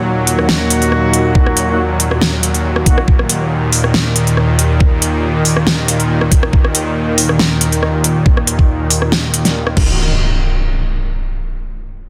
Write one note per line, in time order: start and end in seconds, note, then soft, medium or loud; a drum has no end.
0.00 9.73 D#2 medium
0.00 9.73 A#2 medium
0.00 3.06 F#3 medium
0.00 1.65 A#3 loud
0.00 1.65 D#4 medium
0.00 1.65 F#4 loud
0.27 closed hi-hat medium
0.39 cross-stick soft
0.49 snare loud
0.70 closed hi-hat medium
0.82 closed hi-hat soft
0.92 cross-stick soft
1.14 closed hi-hat medium
1.35 kick loud
1.46 cross-stick medium
1.57 closed hi-hat medium
1.68 1.80 A#3 medium
1.68 1.80 D#4 medium
1.68 1.80 F#4 loud
2.00 closed hi-hat medium
2.11 cross-stick medium
2.22 snare loud
2.43 closed hi-hat medium
2.54 closed hi-hat soft
2.76 cross-stick medium
2.86 2.99 A#3 medium
2.86 2.99 D#4 medium
2.86 2.99 F#4 medium
2.86 kick loud
2.86 closed hi-hat medium
2.98 cross-stick medium
3.08 9.73 D#3 medium
3.08 kick loud
3.19 cross-stick medium
3.29 closed hi-hat medium
3.73 open hi-hat medium
3.84 cross-stick medium
3.94 snare loud
4.16 closed hi-hat medium
4.27 closed hi-hat soft
4.37 cross-stick medium
4.59 closed hi-hat medium
4.80 kick loud
5.02 closed hi-hat medium
5.45 open hi-hat loud
5.57 cross-stick medium
5.67 snare loud
5.88 closed hi-hat medium
6.00 closed hi-hat soft
6.21 cross-stick medium
6.32 kick loud
6.32 closed hi-hat medium
6.43 cross-stick medium
6.53 kick loud
6.64 cross-stick medium
6.75 closed hi-hat medium
7.18 open hi-hat loud
7.29 cross-stick medium
7.39 snare loud
7.61 closed hi-hat medium
7.72 closed hi-hat soft
7.83 cross-stick medium
8.04 closed hi-hat medium
8.26 kick loud
8.37 cross-stick medium
8.47 closed hi-hat medium
8.59 kick medium
8.90 open hi-hat loud
9.02 cross-stick soft
9.12 snare loud
9.34 closed hi-hat medium
9.45 snare soft
9.45 closed hi-hat soft
9.67 cross-stick medium
9.77 9.97 D#3 medium
9.77 9.97 A#3 medium
9.77 9.97 F#4 medium
9.77 kick loud
9.77 crash medium
9.77 impact medium